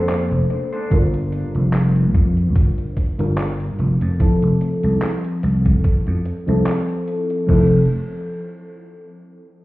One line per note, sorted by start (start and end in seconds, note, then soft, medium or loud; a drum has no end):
0.00 0.33 F2 loud
0.00 0.86 A#3 medium
0.00 0.87 D4 medium
0.00 0.87 A4 medium
0.00 0.88 C5 medium
0.09 clap loud
0.09 closed hi-hat loud
0.31 0.44 F1 medium
0.31 closed hi-hat soft
0.50 muted clean electric guitar stroke medium
0.50 closed hi-hat soft
0.73 0.91 D4 medium
0.73 0.91 A4 medium
0.73 0.91 C5 medium
0.73 closed hi-hat soft
0.90 1.43 G1 loud
0.90 3.13 G3 medium
0.90 3.14 D4 medium
0.90 3.14 F4 medium
0.90 3.15 A#4 medium
0.90 kick loud
0.90 closed hi-hat medium
1.14 closed hi-hat soft
1.32 closed hi-hat medium
1.55 2.15 F1 medium
1.55 closed hi-hat soft
1.73 clap loud
1.73 closed hi-hat medium
1.96 closed hi-hat soft
2.14 2.56 F2 medium
2.14 kick loud
2.14 closed hi-hat medium
2.37 closed hi-hat soft
2.56 2.71 G1 loud
2.56 kick loud
2.56 closed hi-hat loud
2.78 closed hi-hat soft
2.97 kick medium
2.97 closed hi-hat medium
3.18 3.69 G1 medium
3.18 3.76 G3 medium
3.18 3.77 D4 medium
3.18 3.77 F4 medium
3.18 3.77 A#4 medium
3.18 closed hi-hat soft
3.38 clap loud
3.38 closed hi-hat loud
3.60 closed hi-hat soft
3.79 3.94 F1 loud
3.79 closed hi-hat soft
4.01 4.20 F2 medium
4.01 closed hi-hat soft
4.19 6.42 F3 medium
4.19 6.42 C4 medium
4.19 6.43 E4 medium
4.19 6.43 A4 medium
4.19 muted slap bass stroke soft
4.19 kick loud
4.19 closed hi-hat medium
4.42 4.55 F1 medium
4.42 closed hi-hat soft
4.61 closed hi-hat medium
4.83 4.96 C2 medium
4.83 closed hi-hat soft
5.02 clap loud
5.02 closed hi-hat medium
5.24 closed hi-hat soft
5.43 5.72 C2 medium
5.43 closed hi-hat medium
5.65 kick loud
5.65 closed hi-hat soft
5.84 kick loud
5.84 closed hi-hat medium
6.07 6.19 F2 medium
6.07 closed hi-hat soft
6.25 closed hi-hat medium
6.46 6.60 C2 loud
6.46 7.44 F3 medium
6.46 7.44 C4 medium
6.46 7.45 E4 medium
6.46 7.45 A4 medium
6.46 closed hi-hat soft
6.66 clap loud
6.66 closed hi-hat medium
6.89 closed hi-hat soft
7.08 closed hi-hat soft
7.30 closed hi-hat soft
7.46 7.87 F1 medium
7.46 7.79 F3 medium
7.46 7.80 C4 medium
7.46 7.80 E4 medium
7.46 kick loud
7.46 crash medium
7.51 7.81 A4 medium